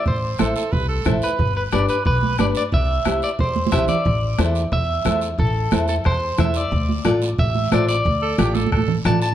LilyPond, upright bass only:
\new Staff \with { instrumentName = "Upright bass" } { \clef bass \time 4/4 \key a \minor \tempo 4 = 180 a,,4 a,,8 r8 c,4 a,,8 r8 | g,,4 g,,8 r8 b,,4 g,,8 r8 | c,4 c,8 r8 e,4 c,8 r8 | a,,4 e,4 e,4 e,4 |
a,,4 e,4 e,4 e,4 | d,4 a,,4 a,,4 a,,4 | d,4 a,,4 a,,4 a,,4 | }